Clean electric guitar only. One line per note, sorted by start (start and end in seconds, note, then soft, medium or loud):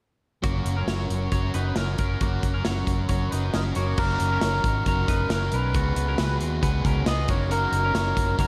0.44 0.76 A#3 medium
0.44 0.75 F#4 medium
0.77 0.88 C#4 medium
0.77 0.88 A#4 medium
0.88 1.30 F#4 soft
0.88 1.30 C#5 medium
1.32 1.55 F#4 soft
1.32 1.54 C#5 medium
1.54 1.77 D#4 medium
1.54 1.76 B4 medium
1.77 1.99 C#4 soft
1.77 1.98 A#4 medium
1.99 2.22 C#4 soft
1.99 2.21 A#4 medium
2.21 2.53 A#3 medium
2.21 2.52 F#4 medium
2.54 2.65 C#4 medium
2.54 2.65 A#4 medium
2.66 3.07 F#4 soft
2.66 3.07 C#5 medium
3.09 3.32 F#4 medium
3.09 3.31 C#5 medium
3.31 3.54 D#4 medium
3.31 3.53 B4 medium
3.55 3.76 C#4 soft
3.55 3.76 A#4 medium
3.76 3.97 A#3 soft
3.76 3.97 F#4 medium
3.98 4.29 A#3 medium
3.98 4.29 F#4 medium
4.32 4.43 C#4 medium
4.32 4.42 A#4 medium
4.43 4.84 F#4 medium
4.43 4.84 C#5 medium
4.88 5.09 F#4 medium
4.88 5.08 C#5 medium
5.09 5.31 D#4 medium
5.09 5.31 B4 medium
5.32 5.54 C#4 medium
5.32 5.53 A#4 medium
5.54 5.76 C#4 medium
5.54 5.75 A#4 medium
5.76 6.07 B3 medium
5.76 6.06 F#4 medium
6.08 6.19 C#4 medium
6.08 6.19 A#4 medium
6.19 6.61 F#4 medium
6.19 6.61 B4 medium
6.63 6.85 F#4 medium
6.63 6.85 B4 medium
6.86 7.08 C#4 medium
6.86 7.07 A#4 medium
7.07 7.29 B3 soft
7.07 7.29 G#4 medium
7.29 7.51 A#3 medium
7.29 7.50 F#4 medium
7.52 7.83 A#3 medium
7.52 7.82 F#4 medium
7.85 7.96 C#4 medium
7.85 7.95 A#4 medium
7.95 8.37 F#4 medium
7.95 8.37 C#5 medium
8.40 8.47 F#4 medium
8.40 8.47 C#5 medium